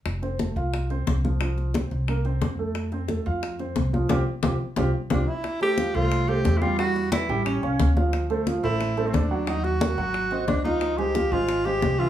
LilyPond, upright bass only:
\new Staff \with { instrumentName = "Upright bass" } { \clef bass \time 4/4 \key f \major \tempo 4 = 178 f,,4. c,4. c,4~ | c,4. c,4. f,4~ | f,4. f,4. c,4 | c,8 r8 c,8 r8 c,8 r8 c,8 r8 |
r4. c,4. e,4~ | e,4. a,,4 bis,,8 d,4~ | d,4. a,,4. ees,4~ | ees,4. aes,,4. des,4~ |
des,4. aes,,4. c,4 | }